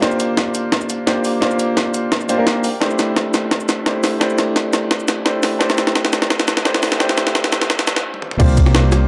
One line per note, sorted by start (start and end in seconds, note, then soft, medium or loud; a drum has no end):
0.00 1.06 A#3 loud
0.00 0.02 D4 medium
0.00 1.05 D4 medium
0.00 0.02 F4 medium
0.00 1.05 F4 medium
0.00 0.03 G4 medium
0.00 1.05 G4 medium
0.00 0.04 C5 loud
0.00 1.06 C5 loud
0.00 kick medium
0.00 snare medium
0.00 closed hi-hat medium
0.12 shaker soft
0.20 closed hi-hat medium
0.20 shaker medium
0.37 kick loud
0.37 snare medium
0.37 closed hi-hat medium
0.55 closed hi-hat medium
0.55 shaker medium
0.72 kick loud
0.72 snare medium
0.72 closed hi-hat medium
0.81 shaker soft
0.90 closed hi-hat medium
0.90 shaker medium
1.06 1.39 A#3 medium
1.06 1.40 D4 medium
1.06 1.40 F4 medium
1.06 1.40 G4 medium
1.06 1.40 C5 loud
1.06 kick loud
1.06 snare medium
1.06 closed hi-hat medium
1.25 open hi-hat medium
1.25 shaker medium
1.41 2.27 A#3 loud
1.41 2.27 D4 medium
1.41 2.28 F4 medium
1.41 2.28 G4 medium
1.41 2.28 C5 loud
1.41 kick medium
1.41 snare medium
1.41 closed hi-hat medium
1.51 shaker soft
1.59 closed hi-hat medium
1.59 shaker medium
1.77 kick loud
1.77 snare medium
1.77 closed hi-hat medium
1.94 closed hi-hat medium
1.94 shaker medium
2.12 kick loud
2.12 snare medium
2.12 closed hi-hat medium
2.21 shaker soft
2.29 2.36 A#3 medium
2.29 2.36 D4 medium
2.29 2.36 F4 medium
2.29 2.36 G4 medium
2.29 2.37 C5 loud
2.29 closed hi-hat medium
2.29 shaker medium
2.38 2.63 A#3 medium
2.38 2.63 D4 medium
2.38 2.63 F4 medium
2.38 2.63 G4 medium
2.38 2.64 A#4 loud
2.47 kick loud
2.47 snare medium
2.47 closed hi-hat medium
2.64 open hi-hat medium
2.64 shaker medium
2.80 3.84 A3 medium
2.80 3.84 D4 medium
2.80 3.84 E4 medium
2.80 3.85 G4 medium
2.80 3.85 C5 loud
2.80 kick medium
2.80 snare medium
2.80 closed hi-hat medium
2.91 shaker soft
2.99 snare medium
2.99 closed hi-hat medium
2.99 shaker medium
3.16 kick loud
3.16 snare medium
3.16 closed hi-hat medium
3.34 snare medium
3.34 closed hi-hat medium
3.34 shaker medium
3.51 kick loud
3.51 snare medium
3.51 closed hi-hat medium
3.60 shaker soft
3.69 snare medium
3.69 closed hi-hat medium
3.69 shaker medium
3.86 4.18 A3 medium
3.86 4.19 D4 medium
3.86 4.19 E4 medium
3.86 4.19 G4 medium
3.86 4.20 C5 loud
3.86 kick medium
3.86 snare medium
3.86 closed hi-hat medium
4.04 snare medium
4.04 open hi-hat medium
4.04 shaker medium
4.20 5.23 A3 loud
4.20 5.23 D4 medium
4.20 5.24 E4 medium
4.20 5.24 G4 medium
4.20 5.24 C5 loud
4.20 kick loud
4.20 snare medium
4.20 closed hi-hat medium
4.30 shaker soft
4.39 snare medium
4.39 closed hi-hat medium
4.39 shaker medium
4.56 kick loud
4.56 snare medium
4.56 closed hi-hat medium
4.73 snare medium
4.73 closed hi-hat medium
4.73 shaker medium
4.91 kick loud
4.91 snare medium
4.91 closed hi-hat medium
5.00 shaker soft
5.08 snare medium
5.08 closed hi-hat medium
5.08 shaker medium
5.25 5.58 A3 medium
5.25 5.58 D4 medium
5.25 5.59 E4 medium
5.25 5.59 G4 medium
5.25 5.59 C5 loud
5.25 kick loud
5.25 snare medium
5.25 closed hi-hat medium
5.43 snare medium
5.43 open hi-hat medium
5.43 shaker medium
5.59 6.63 A3 loud
5.59 6.63 D4 medium
5.59 6.63 E4 medium
5.59 6.64 G4 medium
5.59 6.64 C5 loud
5.59 kick loud
5.59 snare medium
5.59 closed hi-hat medium
5.70 snare medium
5.70 shaker soft
5.78 snare medium
5.78 closed hi-hat medium
5.78 shaker medium
5.87 snare medium
5.95 kick loud
5.95 snare medium
5.95 closed hi-hat medium
6.05 snare medium
6.13 snare loud
6.13 closed hi-hat medium
6.13 shaker medium
6.22 snare medium
6.30 kick loud
6.30 snare loud
6.30 closed hi-hat medium
6.40 snare medium
6.40 shaker soft
6.48 snare loud
6.48 closed hi-hat medium
6.48 shaker medium
6.57 snare medium
6.65 6.97 A3 medium
6.65 6.98 D4 medium
6.65 6.98 E4 medium
6.65 6.98 G4 medium
6.65 6.99 C5 loud
6.65 kick loud
6.65 snare loud
6.65 closed hi-hat medium
6.74 snare medium
6.83 snare loud
6.83 open hi-hat medium
6.83 shaker medium
6.92 snare medium
6.99 8.02 A3 loud
6.99 8.02 D4 medium
6.99 8.03 E4 medium
6.99 8.03 G4 medium
6.99 8.03 C5 loud
6.99 kick loud
6.99 snare loud
6.99 closed hi-hat medium
7.09 snare medium
7.09 shaker soft
7.18 snare loud
7.18 closed hi-hat loud
7.18 shaker medium
7.27 snare medium
7.35 kick loud
7.35 snare loud
7.35 closed hi-hat medium
7.44 snare medium
7.52 snare loud
7.52 closed hi-hat loud
7.52 shaker medium
7.62 snare medium
7.70 kick loud
7.70 snare loud
7.70 closed hi-hat medium
7.79 snare loud
7.79 shaker soft
7.87 snare loud
7.87 closed hi-hat loud
7.87 shaker medium
7.96 snare loud
8.14 high tom medium
8.22 mid tom medium
8.31 mid tom medium
8.38 9.08 C2 loud
8.38 9.08 A#3 loud
8.38 9.08 D4 medium
8.38 9.08 F4 medium
8.38 9.08 G4 medium
8.38 9.08 C5 loud
8.38 kick loud
8.38 closed hi-hat medium
8.38 crash loud
8.49 shaker soft
8.57 kick medium
8.57 closed hi-hat loud
8.57 shaker medium
8.66 snare soft
8.75 snare loud
8.75 closed hi-hat medium
8.92 snare medium
8.92 closed hi-hat loud
8.92 shaker medium